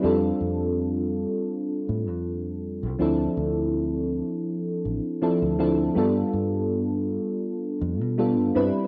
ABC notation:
X:1
M:4/4
L:1/16
Q:"Swing 16ths" 1/4=81
K:Gmix
V:1 name="FM electric piano"
[G,CDFA]12 z4 | [F,CDEA]12 [F,CDEA]2 [F,CDEA]2 | [G,B,DFA]12 [G,B,DFA]2 [G,CDEB]2 |]
V:2 name="Fingered electric bass" clef=bass
F,, z F,,4- F,, z3 A,, F,,4 C,, | D,, z D,,4- D,, z3 A,,, z2 D,,3 | G,, z G,,4- G,, z3 F,, B,,2 G,, G,, z |]